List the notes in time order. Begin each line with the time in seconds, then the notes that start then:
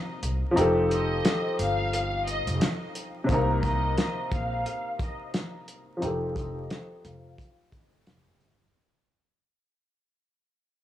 Already playing: C3 A#3 C4 D#4 A#4
0.23 C2, closed hi-hat
0.51 F3 C4
0.56 F1 D#4 G4, closed hi-hat
0.61 A4
0.90 D#5, closed hi-hat
1.25 snare, closed hi-hat
1.59 G1 F5, closed hi-hat
1.93 closed hi-hat
2.27 D#5, closed hi-hat
2.47 F1, closed hi-hat
2.61 snare, closed hi-hat
2.95 closed hi-hat
3.24 C3 C4
3.29 C2 A#3 D#4, kick, closed hi-hat
3.34 A#4
3.63 D#5, kick, closed hi-hat
3.98 snare, closed hi-hat
4.31 A#1 F5, kick, closed hi-hat
4.66 closed hi-hat
4.99 D#5, kick, closed hi-hat
5.34 snare, closed hi-hat
5.68 closed hi-hat
5.97 F3 C4
6.01 F1 D#4 G4, closed hi-hat
6.06 A4
6.35 D#5, kick, closed hi-hat
6.70 snare, closed hi-hat
7.03 F1 F5, closed hi-hat
7.38 kick, closed hi-hat
7.72 G1 D#5, kick, closed hi-hat
8.07 F1, snare, closed hi-hat
8.41 G1, closed hi-hat